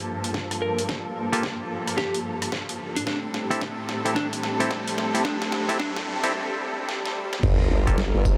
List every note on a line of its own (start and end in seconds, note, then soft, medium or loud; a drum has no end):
0.00 3.03 G2 medium
0.00 3.03 F3 medium
0.00 3.03 A#3 medium
0.00 3.03 A4 medium
0.00 riser medium
0.24 closed hi-hat medium
0.34 kick loud
0.34 snare medium
0.51 cross-stick soft
0.51 closed hi-hat medium
0.62 0.82 A#4 medium
0.79 closed hi-hat medium
0.89 kick medium
0.89 snare medium
1.32 1.46 A#3 medium
1.32 1.46 F4 medium
1.32 1.46 G4 medium
1.32 1.46 A4 loud
1.32 closed hi-hat medium
1.43 kick loud
1.43 snare medium
1.88 cross-stick soft
1.88 closed hi-hat medium
1.97 2.18 G4 medium
1.97 kick loud
1.97 snare medium
2.14 closed hi-hat medium
2.42 cross-stick medium
2.42 closed hi-hat medium
2.52 kick loud
2.52 snare medium
2.69 closed hi-hat medium
2.96 3.03 D4 medium
2.96 closed hi-hat medium
3.06 7.39 A2 medium
3.06 7.39 G3 medium
3.06 7.39 C4 medium
3.06 3.17 D4 medium
3.06 7.39 A4 medium
3.06 kick loud
3.06 snare medium
3.34 snare medium
3.50 3.64 C4 medium
3.50 3.64 E4 medium
3.50 3.64 G4 medium
3.50 3.64 A4 loud
3.50 closed hi-hat medium
3.61 kick medium
3.61 snare medium
3.89 snare medium
4.05 4.14 C4 medium
4.05 4.14 E4 medium
4.05 4.14 G4 medium
4.05 4.14 A4 medium
4.05 closed hi-hat medium
4.16 4.27 D4 medium
4.16 kick loud
4.16 snare medium
4.33 closed hi-hat medium
4.43 snare medium
4.60 4.73 C4 medium
4.60 4.73 E4 medium
4.60 4.73 G4 medium
4.60 4.73 A4 loud
4.60 closed hi-hat medium
4.71 kick loud
4.71 snare medium
4.88 closed hi-hat medium
4.98 snare medium
5.14 5.23 C4 medium
5.14 5.23 E4 medium
5.14 5.23 G4 medium
5.14 5.23 A4 medium
5.14 closed hi-hat medium
5.25 5.36 D4 medium
5.25 kick loud
5.25 snare medium
5.42 snare medium
5.52 snare medium
5.69 5.78 C4 medium
5.69 5.78 E4 medium
5.69 5.78 G4 medium
5.69 5.78 A4 loud
5.69 snare medium
5.69 closed hi-hat medium
5.80 5.90 D4 medium
5.80 kick loud
5.80 snare loud
5.97 snare medium
6.23 6.32 C4 loud
6.23 6.32 E4 medium
6.23 6.32 G4 medium
6.23 6.32 A4 loud
6.23 snare medium
6.23 closed hi-hat medium
6.34 swell medium
6.89 snare medium
7.06 snare medium
7.33 snare medium
7.43 7.69 G1 loud
7.43 8.38 G3 medium
7.43 8.38 F4 medium
7.43 8.38 A4 medium
7.43 8.38 A#4 medium
7.43 kick loud
7.43 crash loud
7.43 sub drop medium
7.70 8.12 G1 medium
7.87 8.00 A#3 loud
7.87 8.00 F4 medium
7.87 8.00 G4 medium
7.87 8.00 A4 loud
7.87 kick loud
7.87 closed hi-hat medium
7.98 snare loud
8.14 8.38 G1 medium
8.25 kick loud
8.25 tambourine medium